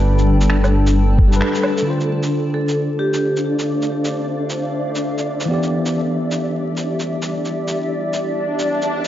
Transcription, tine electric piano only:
X:1
M:4/4
L:1/16
Q:"Swing 16ths" 1/4=132
K:Ddor
V:1 name="Tine electric piano"
[G,DAB]8- [G,DAB]3 [G,DAB]4- [G,DAB] | [D,DFc]16- | [D,DFc]16 | [E,B,Gd]16- |
[E,B,Gd]16 |]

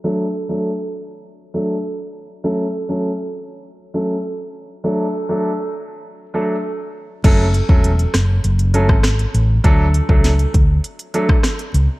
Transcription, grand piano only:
X:1
M:4/4
L:1/16
Q:1/4=100
K:F#m
V:1 name="Grand piano"
[F,A,DA] z2 [F,A,DA] z6 [F,A,DA] z4 z | [F,A,CA] z2 [F,A,CA] z6 [F,A,CA] z4 z | [F,A,DA] z2 [F,A,DA] z6 [F,A,DA] z4 z | [F,A,CA] z2 [F,A,CA] z6 [F,A,CA] z4 z |
[F,A,DA] z2 [F,A,DA] z6 [F,A,DA] z4 z |]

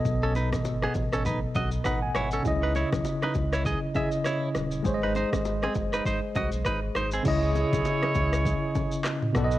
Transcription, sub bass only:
X:1
M:4/4
L:1/16
Q:"Swing 16ths" 1/4=100
K:C#m
V:1 name="Sub bass" clef=bass
B,,,3 G,,,3 A,,,4 B,,,2 A,,,2 G,,,2 | C,,3 B,,, z2 C,,3 z4 z D,,,2 | G,,,3 G,,,3 F,,,2 G,,, z ^B,,, =B,,, G,,,2 G,,,2 | C,,3 B,,, z2 C,,3 z4 z B,,,2 |]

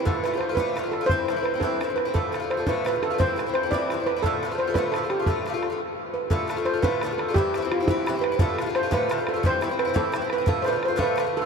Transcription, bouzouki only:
X:1
M:6/8
L:1/16
Q:3/8=115
K:Ddor
V:1 name="Bouzouki"
[A,,D,A,F]2 [A,,D,A,F] [D,A,F]2 [D,A,F] [A,,D,A,F]2 [A,,D,A,F] [D,A,F]2 [D,A,F] | [G,,E,CE]2 [G,,E,CE] [E,CE]2 [E,CE] [G,,E,CE]2 [G,,E,CE] [E,CE]2 [E,CE] | [A,,D,A,F]2 [A,,D,A,F] [D,A,F]2 [D,A,F] [A,,D,A,F]2 [A,,D,A,F] [D,A,F]2 [D,A,F] | [G,,E,CE]2 [G,,E,CE] [E,CE]2 [E,CE] [G,,E,CE]2 [G,,E,CE] [E,CE]2 [E,CE] |
[A,,D,A,F]2 [A,,D,A,F] [D,A,F]2 [D,A,F] [A,,D,A,F]2 [A,,D,A,F] [D,A,F]2 [D,A,F] | [A,,D,A,F]2 [A,,D,A,F] [D,A,F]2 [D,A,F] z6 | [A,,D,A,F]2 [A,,D,A,F] [D,A,F]2 [D,A,F] [A,,D,A,F]2 [A,,D,A,F] [D,A,F]2 [D,A,F] | [G,,E,CE]2 [G,,E,CE] [E,CE]2 [E,CE] [G,,E,CE]2 [G,,E,CE] [E,CE]2 [E,CE] |
[A,,D,A,F]2 [A,,D,A,F] [D,A,F]2 [D,A,F] [A,,D,A,F]2 [A,,D,A,F] [D,A,F]2 [D,A,F] | [G,,E,CE]2 [G,,E,CE] [E,CE]2 [E,CE] [G,,E,CE]2 [G,,E,CE] [E,CE]2 [E,CE] | [A,,D,A,F]2 [A,,D,A,F] [D,A,F]2 [D,A,F] [A,,D,A,F]2 [A,,D,A,F] [D,A,F]2 F |]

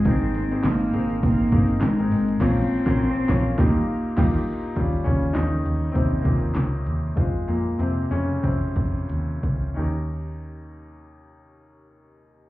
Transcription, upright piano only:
X:1
M:4/4
L:1/16
Q:"Swing 16ths" 1/4=100
K:Ebmix
V:1 name="Upright piano"
[B,CEAB]3 [B,CEAc]3 [B,CEAB]4 [B,CEAB]3 [B,CEAB]3 | [B,,F,B,DFBd]2 z [B,DFB]2 z [B,DFBd]2 [B,,B,EFGB]2 z2 [B,EFGB]2 z2 | z2 [D,D]2 [E,E]4 [C,C]2 [B,,B,]4 z2 | z2 [B,,B,]2 [C,C]2 [D,D]2 [C,C]6 z2 |
[DEGB]16 |]
V:2 name="Upright piano" clef=bass
[A,,E,]6 z8 z2 | z16 | [G,DF]6 z8 z2 | [A,CF]6 z8 z2 |
E,,16 |]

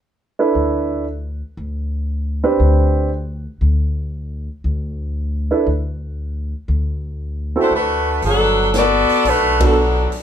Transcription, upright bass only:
X:1
M:4/4
L:1/8
Q:"Swing" 1/4=117
K:G
V:1 name="Upright bass" clef=bass
z2 D,,3 z D,,2- | D,, z D,,3 z D,,2- | D,, z D,,3 z D,,2- | D,, z D,,3 z D,,2 |
G,,,3 z B,,,3 z |]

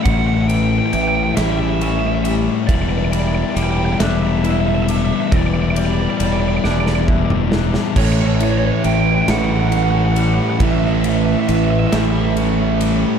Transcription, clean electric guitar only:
X:1
M:6/8
L:1/8
Q:3/8=45
K:Amix
V:1 name="Clean electric guitar" clef=bass
[A,,E,G,C] E, E, G, C G, | E, G, G, D E D | E, G, G, D E D | A,, E, E, G, C G, |
A,, E, E, G, C G, |]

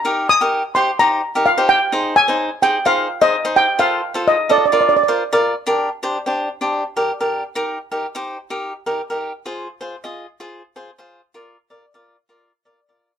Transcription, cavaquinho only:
X:1
M:4/4
L:1/16
Q:1/4=127
K:Eb
V:1 name="Cavaquinho"
[EGB]2 z [EGB]2 z [EGc] z [EGc]2 z [EGB] z [EGc]2 z | [EAc]2 z [EAc]2 z [EAc] z [EAc]2 z [EAc] z [EAc]2 z | [F=Ac]2 z [FAc]2 z [FAe] z [FBd]2 z [FBc] z [FBd]2 z | [DGB]2 z [DGc] z [DGc]2 z [DGc]2 z [DGB] z [DGB]2 z |
[EGB]2 z [EGB] z [EGc]2 z [EGB]2 z [EGB] z [EGB]2 z | [FAc]2 z [FAc] z [FAe]2 z [FAc]2 z [FAc] z [FAc]2 z | [FBd]2 z [FBd] z [FBd]2 z [FBd]2 z [FBd] z [FBd]2 z |]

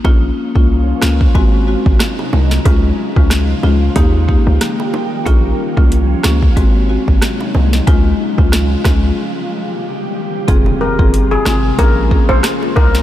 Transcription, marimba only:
X:1
M:4/4
L:1/16
Q:"Swing 16ths" 1/4=92
K:Bbdor
V:1 name="Marimba"
[B,DF]3 [B,DF]3 [B,DF]2 [A,C_G]2 [A,CG] z4 z | [A,DF]3 [A,DF]3 [A,DF]2 [B,EG]2 [B,EG] z4 z | [B,DF]3 [B,DF]3 [B,DF]2 [A,C_G]2 [A,CG] z4 z | [A,DF]3 [A,DF]3 [A,DF]2 z8 |
[CFA]3 [CFA]3 [CFA]2 [B,DA]2 [B,DA] z4 z |]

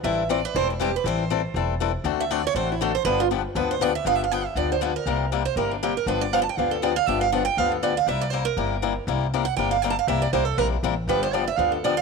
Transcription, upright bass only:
X:1
M:4/4
L:1/8
Q:"Swing" 1/4=239
K:C
V:1 name="Upright bass" clef=bass
A,,,4 E,,,4 | A,,,4 E,,,4 | D,,4 A,,,4 | G,,,4 D,,4 |
G,,,4 D,,4 | C,,4 G,,,4 | G,,,4 D,,4 | G,,,4 D,,4 |
C,,4 G,,,4 | C,,4 G,,,4 | C,,2 C,,2 _B,,,2 A,,,2 | G,,,4 D,,4 |]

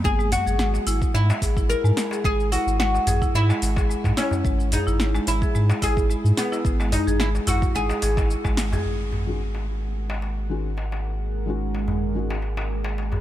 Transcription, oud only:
X:1
M:4/4
L:1/8
Q:"Swing 16ths" 1/4=109
K:Elyd
V:1 name="Oud"
G F3 E2 A2 | G F F2 E3 C- | C D2 E2 G2 B,- | B, D E F G2 z2 |
z8 | z8 |]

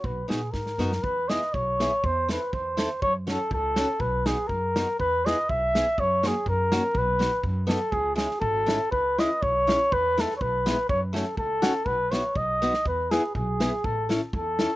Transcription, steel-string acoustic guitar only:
X:1
M:2/4
L:1/8
Q:"Swing" 1/4=122
K:B
V:1 name="Steel-string acoustic guitar"
z [B,DF] z [B,DF] | [K:E] z [B,EG] z [B,EG] | z [=CEA] z [CEA] | z [CFA] z [CFA] |
z [B,DF] z [B,DF] | z [B,EG] z [B,EG] | z [^A,CF] z [A,CF] | z [B,DF] z [B,DF] |
z [G,CE] z [G,CE] | z [G,CE] z [G,CE] | z [G,B,E] z [G,B,E] | z [A,CF] z [A,CF] |
z [B,EF] z [B,DF] | z [B,EG] z [B,EG] | z [CEA] z [CEA] |]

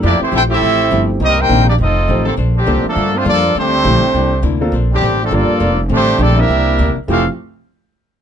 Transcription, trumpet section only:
X:1
M:4/4
L:1/8
Q:"Swing" 1/4=204
K:F
V:1 name="Trumpet section"
[B,EGd] [A,EGc] [EAcg] [CGAe]4 z | [CGB_e] [_EBcg]2 [B,EGd] [CFAe]3 z | z [CDG]2 [B,DA]2 [A,DFc] [B,FAd]2 | [A,DGc]6 z2 |
z [CDG]2 [CDA] [B,FAd]3 z | [A,DGc]2 [CGAd] [DGBe]4 z | [CGAf] z6 z |]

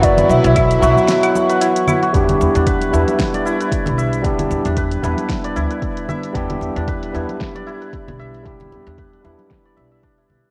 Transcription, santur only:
X:1
M:4/4
L:1/16
Q:"Swing 16ths" 1/4=114
K:Em
V:1 name="Santur"
b2 z E e2 F z2 f z B E z E F | z3 D B2 E z2 d E B z2 e2- | e2 z D B2 E z2 d E B z2 e2- | e2 z D B2 E z2 d E B z2 e2- |
e2 z D B2 E z2 d e e D E z2 |]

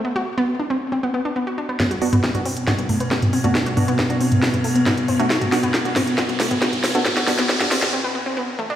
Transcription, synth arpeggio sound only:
X:1
M:4/4
L:1/16
Q:1/4=137
K:Bphr
V:1 name="Synth arpeggio sound"
B, F z B, z D C z C B, B, D B, F D B, | B, F z B, z D C z C B, A, B, B, z C A, | B, F z B, z D C z C B, A, B, B, z C A, | B, F z B, z D C z C B, A, B, B, z C A, |
B, F z B, z D C z C B, B, C B, z A, D |]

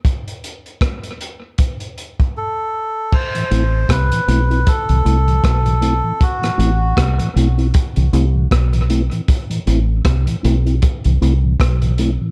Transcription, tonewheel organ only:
X:1
M:4/4
L:1/16
Q:"Swing 16ths" 1/4=78
K:Ador
V:1 name="Tonewheel organ"
z16 | z [A,,E,] [A,CE] z2 [A,,E,] [A,CE] [CE] z [A,,E,] [A,CE] [A,,E,] z [A,,E,] [A,CE] [A,,E,] | z [A,,E,] [A,CE] z2 [A,,E,] [A,CE] [CE] z [A,,E,] [A,CE] [A,,E,] z [A,,E,] [A,CE] [A,,E,] | z [A,,E,] [A,CE] z2 [A,,E,] [A,CE] [CE] z [A,,E,] [A,CE] [A,,E,] z [A,,E,] [A,CE] [A,,E,] |]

